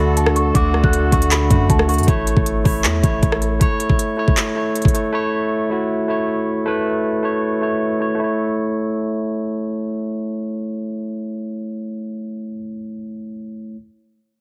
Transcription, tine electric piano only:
0.00 0.54 D3 loud
0.00 0.55 A3 medium
0.00 0.56 F#4 loud
0.54 1.02 D3 loud
0.54 1.03 A3 medium
0.54 1.03 F#4 loud
1.11 1.44 D3 medium
1.11 1.44 A3 medium
1.11 1.45 F#4 medium
1.50 1.82 D3 medium
1.50 1.82 A3 medium
1.50 1.83 F#4 medium
1.88 2.04 D3 medium
1.88 2.05 A3 medium
1.88 2.05 F#4 medium
2.07 2.55 A3 loud
2.07 2.56 E4 loud
2.07 2.56 C#5 loud
2.64 2.97 A3 medium
2.64 2.97 E4 medium
2.64 2.98 C#5 medium
3.03 3.51 A3 medium
3.03 3.51 E4 medium
3.03 3.52 C#5 medium
3.60 4.08 A3 medium
3.60 4.09 E4 medium
3.60 4.09 C#5 loud
4.17 4.49 A3 medium
4.17 4.50 E4 medium
4.17 4.50 C#5 medium
4.55 4.88 A3 medium
4.55 4.88 E4 medium
4.55 4.89 C#5 medium
4.93 5.10 A3 medium
4.93 5.10 E4 medium
4.93 5.11 C#5 medium
5.13 5.61 A3 loud
5.13 5.61 E4 medium
5.13 5.62 C#5 loud
5.70 6.02 A3 medium
5.70 6.03 E4 medium
5.70 6.03 F#4 medium
6.08 6.56 A3 medium
6.08 6.57 E4 medium
6.08 6.58 C#5 medium
6.66 7.14 A3 loud
6.66 7.14 E4 medium
6.66 7.15 B4 loud
7.23 7.55 A3 medium
7.23 7.56 E4 medium
7.23 7.56 C#5 medium
7.61 7.93 A3 medium
7.61 7.94 E4 medium
7.61 7.94 C#5 medium
8.00 8.14 A3 medium
8.00 8.16 E4 medium
8.00 8.17 C#5 medium
8.15 12.45 A3 medium
8.20 12.50 E4 medium
8.24 12.54 C#5 medium

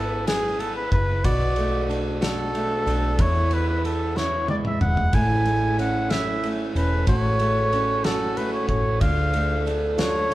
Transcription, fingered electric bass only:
0.00 0.88 G#1 medium
0.92 1.23 F#1 medium
1.24 2.82 B1 medium
2.87 3.17 B1 medium
3.19 4.77 E2 medium
4.81 5.11 E1 medium
5.13 6.71 A1 medium
6.75 7.05 E1 medium
7.08 8.65 A1 medium
8.69 8.99 A1 medium
9.01 10.34 D2 medium

